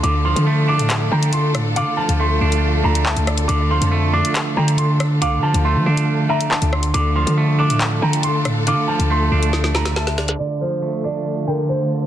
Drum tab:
HH |x--x---xx--xx-x-|x--x---x---x-xxx|x--x---xx--xx-x-|x--x---x---x-x-x|
CP |--------x-------|------------x---|--------x-------|------------x---|
SD |--------------r-|--------------r-|--------------r-|--------------r-|

HH |x--x---xx--xx-x-|x--x---x---x-xxx|----------------|
CP |--------x-------|----------------|----------------|
SD |--------------r-|--------oooooooo|----------------|